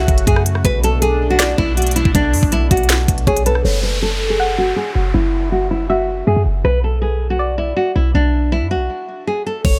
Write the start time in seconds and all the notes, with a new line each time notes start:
Already playing: C#3 A3 F#4 E5
0.08 F#1, kick, closed hi-hat
0.18 closed hi-hat
0.27 F#2 G#4, kick, closed hi-hat
0.36 cross-stick
0.46 closed hi-hat
0.55 cross-stick
0.65 B1 B2 D4 B4, kick, closed hi-hat
0.84 A4, closed hi-hat
1.02 G#4, closed hi-hat
1.30 F#4
1.39 D5, finger snap, snare, closed hi-hat
1.58 B1 E4, kick
1.77 F#4, closed hi-hat
1.82 closed hi-hat
1.87 closed hi-hat
1.91 closed hi-hat
1.96 E4, closed hi-hat
2.05 B1, kick
2.15 B1 D4, kick, closed hi-hat
2.33 F#2, open hi-hat
2.43 B1, kick
2.52 E4, closed hi-hat
2.71 B1 F#4, kick, closed hi-hat
2.77 closed hi-hat
2.83 closed hi-hat
2.89 finger snap, snare, closed hi-hat
3.08 B1, kick, closed hi-hat
3.18 closed hi-hat
3.27 B1 G#4 C#5, kick, closed hi-hat
3.37 closed hi-hat
3.46 A4 B4, closed hi-hat
3.55 cross-stick
3.65 F#1 C#5, downlifter
3.83 B4
4.02 A4
4.30 G#4
4.40 F#5
4.58 F#4
4.76 G#4
4.95 F#1 F#4
5.14 F#1 E4
5.52 F#4
5.71 E4
5.90 F#4 E5
6.27 F#2 G#4
6.36 F#2
6.46 F#1
6.65 B1 B4
6.84 A4
7.02 G#4
7.30 F#4
7.39 D5
7.58 E4
7.76 F#4
7.96 B1 E4
8.15 B1 D4
8.52 E4
8.62 F#2
8.71 F#4
8.76 B1
9.27 G#4
9.46 A4
9.65 F#1 C#5, kick, crash